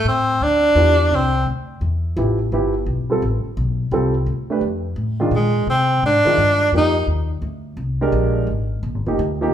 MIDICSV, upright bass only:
0, 0, Header, 1, 3, 480
1, 0, Start_track
1, 0, Tempo, 351494
1, 1514, Time_signature, 4, 2, 24, 8
1, 13025, End_track
2, 0, Start_track
2, 0, Title_t, "Upright bass"
2, 0, Program_c, 0, 32
2, 67, Note_on_c, 0, 45, 76
2, 536, Note_off_c, 0, 45, 0
2, 556, Note_on_c, 0, 38, 72
2, 1021, Note_off_c, 0, 38, 0
2, 1028, Note_on_c, 0, 40, 91
2, 1498, Note_off_c, 0, 40, 0
2, 1505, Note_on_c, 0, 36, 85
2, 1976, Note_off_c, 0, 36, 0
2, 1990, Note_on_c, 0, 38, 70
2, 2459, Note_off_c, 0, 38, 0
2, 2472, Note_on_c, 0, 40, 80
2, 2941, Note_off_c, 0, 40, 0
2, 2958, Note_on_c, 0, 33, 96
2, 3424, Note_off_c, 0, 33, 0
2, 3440, Note_on_c, 0, 31, 76
2, 3905, Note_off_c, 0, 31, 0
2, 3911, Note_on_c, 0, 35, 81
2, 4380, Note_off_c, 0, 35, 0
2, 4400, Note_on_c, 0, 33, 83
2, 4691, Note_off_c, 0, 33, 0
2, 4875, Note_on_c, 0, 35, 92
2, 5336, Note_off_c, 0, 35, 0
2, 5344, Note_on_c, 0, 36, 84
2, 5817, Note_off_c, 0, 36, 0
2, 5823, Note_on_c, 0, 38, 78
2, 6288, Note_off_c, 0, 38, 0
2, 6296, Note_on_c, 0, 41, 77
2, 6765, Note_off_c, 0, 41, 0
2, 6773, Note_on_c, 0, 45, 85
2, 7245, Note_off_c, 0, 45, 0
2, 7254, Note_on_c, 0, 46, 83
2, 7731, Note_off_c, 0, 46, 0
2, 7740, Note_on_c, 0, 48, 77
2, 8215, Note_off_c, 0, 48, 0
2, 8230, Note_on_c, 0, 44, 72
2, 8525, Note_off_c, 0, 44, 0
2, 8706, Note_on_c, 0, 43, 81
2, 9170, Note_off_c, 0, 43, 0
2, 9178, Note_on_c, 0, 41, 82
2, 9648, Note_off_c, 0, 41, 0
2, 9656, Note_on_c, 0, 39, 75
2, 10120, Note_off_c, 0, 39, 0
2, 10128, Note_on_c, 0, 38, 84
2, 10598, Note_off_c, 0, 38, 0
2, 10607, Note_on_c, 0, 36, 84
2, 11086, Note_off_c, 0, 36, 0
2, 11091, Note_on_c, 0, 34, 87
2, 11555, Note_off_c, 0, 34, 0
2, 11563, Note_on_c, 0, 32, 77
2, 12043, Note_off_c, 0, 32, 0
2, 12054, Note_on_c, 0, 34, 81
2, 12213, Note_off_c, 0, 34, 0
2, 12213, Note_on_c, 0, 32, 55
2, 12368, Note_off_c, 0, 32, 0
2, 12377, Note_on_c, 0, 29, 69
2, 12533, Note_off_c, 0, 29, 0
2, 12549, Note_on_c, 0, 38, 90
2, 13010, Note_off_c, 0, 38, 0
2, 13025, End_track
3, 0, Start_track
3, 0, Title_t, "Muted upright bass strokes"
3, 4708, Note_on_c, 9, 29, 39
3, 4844, Note_off_c, 9, 29, 0
3, 8542, Note_on_c, 9, 29, 41
3, 8678, Note_off_c, 9, 29, 0
3, 13025, End_track
0, 0, End_of_file